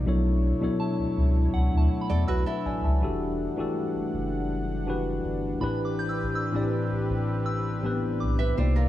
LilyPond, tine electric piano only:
\new Staff \with { instrumentName = "Tine electric piano" } { \time 4/4 \key a \dorian \tempo 4 = 81 << { r2. r16 <b' e''>16 <d'' gis''>16 <e'' a''>16~ | <e'' a''>16 r2. r8. | r1 | } \\ { <b, fis d' e' a' cis''>8 r16 <b, fis d' e' a' cis''>4. r4. r16 | <e d' fis' g' a'>8 r16 <e d' fis' g' a'>4. r16 <e d' fis' g' b'>4 <a, e c' d' g' b'>8~ | <a, e c' d' g' b'>8 r16 <a, e c' d' g' d''>4. r16 <a, e b c' d' g' b'>4 <c bes ees' f' d''>8 | } >> }